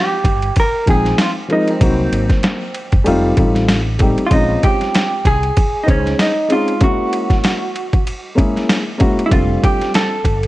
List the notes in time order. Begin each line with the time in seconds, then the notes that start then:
Already playing: F3 G#3 C4 D#4 G4
0.24 G1, kick, ride
0.42 ride
0.56 A#4, kick, ride
0.86 A#1 F3 G#3 C4 D#4 G5, kick, ride
0.90 G#4
1.05 snare, ride
1.18 F4, snare, hi-hat pedal, ride
1.48 F3 G#3 C4 D#4 A#4, ride
1.52 D#4
1.67 C4, ride
1.79 C2 F#3 A#3 C4 D#4 F#4, kick, ride
2.12 G#1, ride
2.30 kick, snare, ride
2.43 snare, hi-hat pedal, ride
2.74 ride
2.92 F#1, kick, ride
3.04 F1 G3 A3 C4 D#4 F4, ride
3.36 A1 G3 A3 C4 D#4 F4, kick, ride
3.55 snare, ride
3.69 snare, hi-hat pedal, ride
3.99 G3 A3 C4 D#4 G4, kick, ride
4.18 ride
4.27 G#3 C4 F4
4.31 A#1 C#4 D#4 F4, kick, ride
4.63 G4, kick, ride
4.81 snare, ride
4.94 snare, hi-hat pedal, ride
5.25 C2 G#4, kick, ride
5.43 ride
5.57 kick, ride
5.83 G#3 D#4 C5
5.88 C#2 C#4 D#4 G#4, kick, ride
6.06 snare, ride
6.19 D#4, snare, hi-hat pedal, ride
6.48 G#3 C4 C#4 D#4 F4 G#4, ride
6.68 ride
6.79 G#3 A#3 C#4 E4 F#4, kick, ride
6.83 F#4
7.13 ride
7.30 kick, snare, ride
7.44 snare, hi-hat pedal, ride
7.76 ride
7.93 kick, ride
8.07 ride
8.35 G#3 A#3 C#4 E4 G#4, kick, ride
8.56 snare, ride
8.69 snare, hi-hat pedal, ride
8.98 G#3 A#3 C#4 E4 F#4, kick, ride
9.19 ride
9.26 G3 A3 E4
9.31 F1 C4 D4 F4, kick, ride
9.63 G4, kick, ride
9.81 snare, ride
9.94 A4, snare, hi-hat pedal, ride
10.25 G1, kick, ride
10.43 ride